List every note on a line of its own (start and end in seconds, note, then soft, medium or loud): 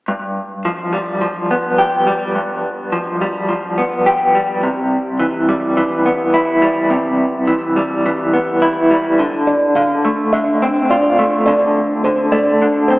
0.08 1.50 G2 soft
0.65 1.20 F3 soft
0.93 2.06 G3 soft
1.21 2.64 F3 soft
1.51 2.95 B3 soft
1.78 3.52 G4 soft
2.07 3.21 G3 soft
2.35 3.78 G2 soft
2.92 3.48 F3 soft
3.21 4.34 G3 soft
3.49 4.63 F3 soft
3.78 4.66 B3 soft
4.06 6.33 G4 soft
4.35 5.48 G3 soft
4.63 6.06 C3 soft
5.19 5.76 E3 soft
5.49 6.61 G3 soft
5.77 7.20 E3 soft
6.06 7.48 B3 soft
6.34 7.76 E4 soft
6.62 7.75 G3 soft
6.90 8.33 C3 soft
7.47 8.05 E3 soft
7.76 8.89 G3 soft
8.06 9.19 E3 soft
8.34 9.19 B3 soft
8.62 9.19 E4 soft
8.91 9.19 G3 soft
9.19 9.75 D3 soft
9.47 9.76 D5 soft
9.75 10.32 D3 soft
9.75 10.33 F5 soft
10.05 11.18 A3 soft
10.33 11.46 D3 soft
10.33 10.90 E5 soft
10.62 12.08 C4 soft
10.90 12.33 F4 soft
10.90 11.44 D5 soft
11.19 12.32 A3 soft
11.46 12.04 D3 soft
11.46 12.03 D5 soft
12.04 12.60 D3 soft
12.04 12.32 C5 soft
12.32 12.99 A3 soft
12.32 12.89 D5 soft
12.62 12.99 D3 soft
12.88 12.99 C4 soft
12.88 12.99 C5 soft